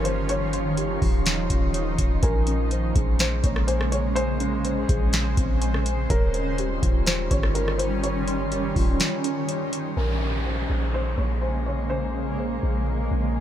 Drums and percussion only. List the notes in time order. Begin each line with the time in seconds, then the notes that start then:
0.05 closed hi-hat
0.29 closed hi-hat
0.53 closed hi-hat
0.77 closed hi-hat
1.02 kick, open hi-hat
1.26 snare, closed hi-hat
1.50 kick, closed hi-hat
1.74 closed hi-hat
1.98 kick, closed hi-hat
2.23 kick, closed hi-hat
2.47 closed hi-hat
2.71 closed hi-hat
2.96 kick, closed hi-hat
3.19 snare, closed hi-hat
3.44 kick, closed hi-hat
3.56 cross-stick
3.68 closed hi-hat
3.81 cross-stick
3.92 closed hi-hat
4.16 closed hi-hat
4.40 closed hi-hat
4.65 closed hi-hat
4.89 kick, closed hi-hat
5.13 snare, closed hi-hat
5.37 kick, closed hi-hat
5.62 closed hi-hat
5.74 cross-stick
5.86 closed hi-hat
6.10 kick, closed hi-hat
6.34 closed hi-hat
6.58 closed hi-hat
6.83 kick, closed hi-hat
7.06 snare, closed hi-hat
7.31 kick, closed hi-hat
7.43 cross-stick
7.55 closed hi-hat
7.68 cross-stick
7.79 closed hi-hat
8.04 closed hi-hat
8.28 closed hi-hat
8.52 closed hi-hat
8.76 kick, open hi-hat
9.00 snare, closed hi-hat
9.24 closed hi-hat
9.49 closed hi-hat
9.73 closed hi-hat